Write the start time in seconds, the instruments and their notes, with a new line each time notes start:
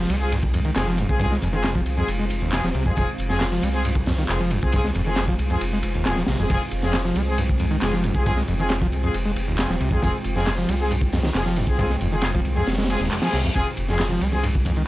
Already playing: ambient pad G#3 C4 F4 C5 F5, sub drop
0.00 acid bass F3
0.10 sub bass C2, acid bass G#3, closed hi-hat, ride
0.21 brass ensemble C4 F4 G#4, closed hi-hat
0.32 acid bass G2, closed hi-hat, ride
0.43 kick
0.54 acid bass F2, closed hi-hat, ride
0.64 acid bass D#3, closed hi-hat, ride
0.75 sub bass F1, acid bass F1, brass ensemble C4 F4 G#4, snare, clap, closed hi-hat, ride
0.87 acid bass F3, snare
0.98 acid bass F2, closed hi-hat, ride
1.09 sub bass C2, brass ensemble C4 F4 G#4, kick, closed hi-hat
1.20 acid bass G2, brass ensemble C4 F4 G#4, kick, closed hi-hat, ride
1.31 acid bass G#3, snare
1.42 sub bass F1, acid bass F2, closed hi-hat, ride
1.53 acid bass D#3, brass ensemble C4 F4 G#4, closed hi-hat
1.64 acid bass F1, snare, clap, closed hi-hat, ride
1.75 acid bass F3, kick
1.86 sub bass C2, closed hi-hat, ride
1.97 acid bass F2, brass ensemble C4 F4 G#4, closed hi-hat
2.08 sub bass F1, closed hi-hat, ride
2.19 acid bass G#3
2.30 sub bass F1, closed hi-hat, ride
2.41 acid bass D#2, closed hi-hat
2.52 acid bass F1, brass ensemble C4 F4 G#4, snare, clap, closed hi-hat, ride
2.63 sub bass D#1, acid bass F3, snare
2.74 sub bass C2, acid bass C3, closed hi-hat, ride
2.85 acid bass F2, brass ensemble C4 F4 G#4, kick, closed hi-hat
2.96 sub bass F1, acid bass F2, brass ensemble C4 F4 G#4, kick, closed hi-hat, ride
3.18 sub bass F1, closed hi-hat, ride
3.29 acid bass F2, brass ensemble C4 F4 G#4, snare, closed hi-hat
3.40 acid bass F2, snare, clap, closed hi-hat, open hi-hat
3.52 acid bass F3
3.62 sub bass C2, acid bass G#3, closed hi-hat, ride
3.73 brass ensemble C4 F4 G#4, closed hi-hat
3.84 acid bass G2, closed hi-hat, ride
3.95 kick
4.06 acid bass F2, snare, closed hi-hat, open hi-hat
4.17 acid bass D#3, closed hi-hat
4.29 sub bass F1, acid bass F1, brass ensemble C4 F4 G#4, clap, closed hi-hat, ride
4.40 acid bass F3
4.51 acid bass F2, closed hi-hat, ride
4.62 sub bass C2, brass ensemble C4 F4 G#4, kick, closed hi-hat
4.72 acid bass G2, brass ensemble C4 F4 G#4, kick, closed hi-hat, ride
4.84 acid bass G#3, snare
4.95 sub bass F1, acid bass F2, closed hi-hat, ride
5.06 acid bass D#3, brass ensemble C4 F4 G#4, closed hi-hat
5.16 acid bass F1, snare, clap, closed hi-hat, ride
5.28 acid bass F3, kick
5.39 sub bass C2, closed hi-hat, ride
5.50 acid bass F2, brass ensemble C4 F4 G#4, closed hi-hat
5.61 sub bass F1, closed hi-hat, ride
5.73 acid bass G#3
5.83 sub bass F1, closed hi-hat, ride
5.94 acid bass D#2, closed hi-hat
6.05 sub bass D#1, acid bass F1, brass ensemble C4 F4 G#4, snare, clap, closed hi-hat, ride
6.16 acid bass F3, snare
6.27 sub bass A#1, acid bass C3, snare, closed hi-hat, open hi-hat
6.39 sub bass F1, acid bass F2, brass ensemble C4 F4 G#4, closed hi-hat
6.49 sub bass F1, acid bass F2, brass ensemble C4 F4 G#4, ambient pad G5, kick, closed hi-hat, ride
6.71 sub bass F1, closed hi-hat, ride
6.82 acid bass F2, brass ensemble C4 F4 G#4, snare, closed hi-hat
6.93 acid bass F2, snare, clap, closed hi-hat, open hi-hat
7.05 acid bass F3
7.16 sub bass C2, acid bass G#3, closed hi-hat, ride
7.27 brass ensemble C4 F4 G#4, closed hi-hat
7.38 acid bass G2, closed hi-hat, ride
7.50 kick
7.60 acid bass F2, closed hi-hat, ride
7.71 acid bass D#3, closed hi-hat, ride
7.82 acid bass F1, sub bass F1, brass ensemble C4 F4 G#4, snare, clap, closed hi-hat, ride
7.93 acid bass F3, snare
8.04 acid bass F2, closed hi-hat, ride
8.15 sub bass C2, brass ensemble C4 F4 G#4, kick, closed hi-hat
8.26 acid bass G2, brass ensemble C4 F4 G#4, kick, closed hi-hat, ride
8.37 acid bass G#3, snare
8.48 sub bass F1, acid bass F2, closed hi-hat, ride
8.59 acid bass D#3, brass ensemble C4 F4 G#4, closed hi-hat
8.69 acid bass F1, snare, clap, closed hi-hat, ride
8.81 acid bass F3, kick
8.92 sub bass C2, closed hi-hat, ride
9.03 acid bass F2, brass ensemble C4 F4 G#4, closed hi-hat
9.14 sub bass F1, closed hi-hat, ride
9.25 acid bass G#3
9.36 sub bass F1, closed hi-hat, ride
9.47 acid bass D#2, closed hi-hat
9.58 acid bass F1, brass ensemble C4 F4 G#4, snare, clap, closed hi-hat, ride
9.69 sub bass D#1, acid bass F3, snare
9.80 sub bass C2, acid bass C3, closed hi-hat, ride
9.91 acid bass F2, brass ensemble C4 F4 G#4, kick, closed hi-hat
10.02 sub bass F1, acid bass F2, brass ensemble C4 F4 G#4, kick, closed hi-hat, ride
10.24 sub bass F1, closed hi-hat, ride
10.35 acid bass F2, brass ensemble C4 F4 G#4, snare, closed hi-hat
10.46 acid bass F2, snare, clap, closed hi-hat, open hi-hat
10.58 acid bass F3
10.69 sub bass C2, acid bass G#3, closed hi-hat, ride
10.80 brass ensemble C4 F4 G#4, closed hi-hat
10.91 acid bass G2, closed hi-hat, ride
11.01 kick
11.13 acid bass F2, snare, closed hi-hat, open hi-hat
11.23 acid bass D#3, snare, closed hi-hat, open hi-hat
11.34 sub bass F1, acid bass F1, brass ensemble C4 F4 G#4, snare, clap, closed hi-hat, open hi-hat
11.46 acid bass F3, snare
11.56 acid bass F2, closed hi-hat, ride
11.67 sub bass C2, brass ensemble C4 F4 G#4, kick, closed hi-hat
11.79 acid bass G2, brass ensemble C4 F4 G#4, kick, closed hi-hat, ride
11.90 acid bass G#3, snare
12.01 sub bass F1, acid bass F2, closed hi-hat, ride
12.12 acid bass D#3, brass ensemble C4 F4 G#4, closed hi-hat
12.22 acid bass F1, snare, clap, closed hi-hat, ride
12.34 acid bass F3, kick
12.45 sub bass C2, closed hi-hat, ride
12.56 acid bass F2, brass ensemble C4 F4 G#4, closed hi-hat
12.66 sub bass F1, snare, closed hi-hat, open hi-hat, reverse cymbal
12.72 snare, open hi-hat
12.78 acid bass G#3, snare, open hi-hat
12.84 snare, open hi-hat
12.89 brass ensemble C4 F4 G#4, snare, closed hi-hat, ride
13.00 sub bass D#1, acid bass D#2, snare, closed hi-hat
13.11 acid bass F1, clap, closed hi-hat, ride
13.22 acid bass F3, brass ensemble C4 F4 G#4, snare, ride
13.33 sub bass C2, acid bass C3, snare, closed hi-hat, open hi-hat
13.44 acid bass F2, closed hi-hat
13.55 sub bass F1, acid bass F2, brass ensemble C4 F4 G#4, ambient pad A#4 F5, kick, closed hi-hat, ride
13.77 sub bass F1, closed hi-hat, ride
13.88 acid bass F2, brass ensemble C4 F4 G#4, snare, closed hi-hat
13.99 acid bass F2, snare, clap, closed hi-hat, open hi-hat
14.09 acid bass F3, low conga
14.21 sub bass C2, acid bass G#3, closed hi-hat, ride
14.32 brass ensemble C4 F4 G#4, closed hi-hat, high conga, low conga
14.43 acid bass G2, closed hi-hat, ride
14.55 kick
14.65 acid bass F2, closed hi-hat, ride, low conga
14.76 acid bass D#3, closed hi-hat, ride